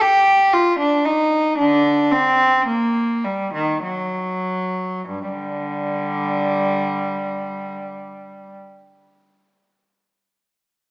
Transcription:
cello
0.01 G4
0.53 F4
0.79 D4
1.05 D#4
1.58 D3 D4
2.11 C4
2.67 A#3
3.24 G3
3.54 D#3
3.83 F#3
5.08 G2
5.28 D3 G3

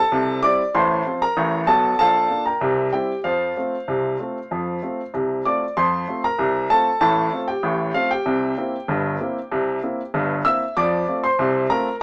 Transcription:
upright piano
Already playing: A4 A5
0.12 C2 C3
0.43 G3 C4 E4 D5 D6
0.75 A1 A2 C5 A5 C6
1.06 F3 C4 F4
1.22 A#4 A#5
1.37 A1 A2
1.67 B1 B2 A4 A5
1.99 A#1 A#2 A4 F5 A5
2.31 A#3 D4 F4
2.46 A#4 G5 A#5
2.61 C2 C3
2.93 G3 C4 E4 G4 G5
3.24 F2 F3 F4 C5 F5
3.57 A3 C4 F4
3.88 C2 C3
4.20 A3 C4 F4
4.51 F2 F3
4.83 A3 C4 F4
5.14 C2 C3
5.45 A3 C4 F4 D5 D6
5.77 F2 F3 C5 C6
6.08 A3 C4 F4
6.24 A#4 A#5
6.38 C2 C3
6.70 A3 C4 F4 A4 A5
7.01 A1 A2 A4 A5
7.33 A3 C4 F4
7.48 G4 G5
7.63 A1 A2
7.94 A3 C4 F4 F5
8.11 G4 G5
8.26 C2 C3
8.58 A#3 C4 E4
8.88 G1 G2
9.21 A#3 C4 E4
9.52 C2 C3
9.83 A#3 C4 E4
10.14 G1 G2
10.45 A#3 C4 E4 E5 E6
10.77 F2 F3 D5 D6
11.08 A3 C4 F4
11.24 C5 C6
11.39 C2 C3
11.70 A3 C4 F4 A#4 A#5

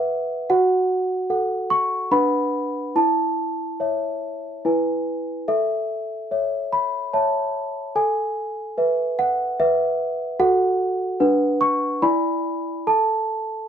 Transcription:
celesta
Already playing: A4 B4 E5 F#5 G#5
0.50 F#4 F#5
1.30 A4 F#5
1.70 C#6
2.11 D4 B4 F#5 B5
2.96 E4 A5
3.80 C#5 E5
4.65 E4 B4 G#5
5.48 A4 E5
6.31 C#5 E5
6.72 B5
7.13 C#5 E5 A5
7.96 A4 G#5
8.78 B4 E5
9.19 F#5
9.60 B4 E5
10.39 F#4 A4 F#5
11.20 D4 B4 F#5
11.61 C#6
12.02 E4 D5 G#5 B5
12.87 A4 A5

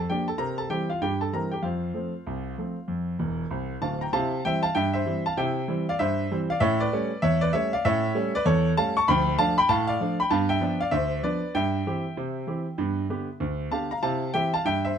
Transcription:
grand piano
0.00 A5
0.10 F3 A#3 D4 G4 G5
0.28 A4 A5
0.38 C3 A#4 A#5
0.58 A4 A5
0.70 E3 G3 C4 G4 G5
0.90 F4 F5
1.01 G2 G4 G5
1.21 A4 A5
1.33 E3 G3 C4 A#4 A#5
1.51 G4 G5
1.62 F2 F4 C5 F5
1.94 F3 A3 C4
2.27 C2
2.58 F3 A3 C4
2.88 F2
3.19 E1 E2
3.51 C2
3.82 D1 D2 F5 A5
4.01 G5 A#5
4.13 C3 E4 F5 A5
4.45 E3 G3 C4 E5 G5
4.63 F5 A5
4.75 G2 E5 G5
4.93 C5 E5
5.06 E3 G3 C4
5.26 F5 A5
5.37 C3 E4 E5 G5
5.68 E3 G3 C4
5.89 D5 F5
5.99 G2 C5 E5
6.31 E3 G3 C4
6.50 D5 F5
6.60 A2 C#4 C#5 E5
6.80 B4 D5
6.93 G3 A3 C#4
7.22 E2 C#5 E5
7.41 B4 D5
7.53 G3 A3 C#4 C#5 E5
7.73 D5 F5
7.85 A2 C#4 C#5 E5
8.15 G3 A3 C#4
8.35 B4 D5
8.45 E2 A4 C#5
8.77 G3 A3 C#4 F5 A5
8.97 A5 C#6
9.08 D2 F3 G5 B5
9.38 F3 A3 D4 F5 A5
9.58 G5 B5
9.69 A2 F5 A5
9.87 D5 F5
10.01 F3 A3 D4
10.20 G5 B5
10.30 G2 B3 F5 A5
10.49 E5 G5
10.61 F3 B3 D4
10.81 D5 F5
10.91 D2 C5 E5
11.23 F3 B3 D4 B4 D5
11.55 G2 E5 G5
11.87 E3 C4 G4
12.17 C3
12.47 E3 C4 G4
12.78 G2 B3
13.09 D3 B3 G4
13.40 D2
13.71 D3 B3 G4 F5 A5
13.91 F5 A#5
14.03 C3 E4 F5 A5
14.34 E3 C4 G4 E5 G5
14.54 F5 A5
14.65 G2 E5 G5
14.85 C5 E5

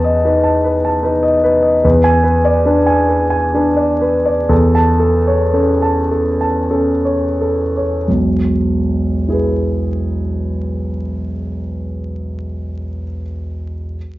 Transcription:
grand piano
Already playing: E2 B4 A5
0.04 D#5
0.25 D#4 B4
0.43 A5
0.64 B4
0.85 A5
1.03 D#4 B4
1.23 D#5
1.44 B4
1.62 D#5
1.84 E2 B4
2.04 G#5
2.23 B4
2.45 D5
2.65 D4 B4
2.87 G#5
3.09 B4
3.30 G#5
3.54 D4 B4
3.76 D5
4.01 B4
4.25 D5
4.49 E2 A4
4.75 A5
4.99 A4
5.27 C#5
5.53 C#4 A4
5.82 A5
6.11 A4
6.41 A5
6.70 C#4 A4
7.05 C#5
7.41 A4
7.77 C#5
8.08 E1 B1
9.28 E4 G#4
9.33 B4

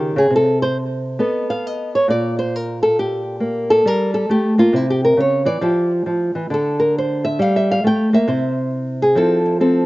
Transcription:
nylon-string guitar
Already playing: C#3 D#3 G4
0.16 C#3 G#4
0.30 C3
0.36 A4
0.62 C5
1.19 B3 A4 D#5
1.50 F5
1.67 D#5
1.95 C#5
2.08 A#2 D5
2.39 C5
2.56 A#4
2.83 A4
2.99 G4
3.40 A#3
3.70 A4
3.86 G3 A#4
4.14 A4
4.30 A3 G4
4.58 A#3 F4
4.73 C3 E4
4.90 G4
5.05 A#4
5.17 C#3 C#5
5.45 E3 D5
5.61 F3 E4 G4
6.06 F3
6.35 E3
6.50 D3 A4
6.80 A#4
6.98 C5
7.25 E5
7.39 G3 F5
7.56 E5
7.71 F5
7.84 A3 G5
8.13 A#3 E5
8.28 C3 E4 C5
9.02 G#4
9.15 F3 C4 E4 A4
9.46 E4
9.61 C4 A4

